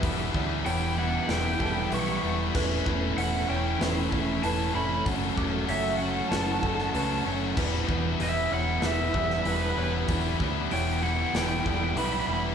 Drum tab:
CC |----------------|x---------------|----------------|x---------------|
HH |o---o---o---o---|----o---o---o---|o---o---o---o---|----o---o---o---|
SD |--------o-------|--------o-------|--------o--o----|--------o--o----|
BD |o-o-------o-----|o-o-------o-----|o-o-------o-----|o-o-------o-----|

CC |----------------|
HH |o---o---o---o---|
SD |--------o-------|
BD |o-o-------o-----|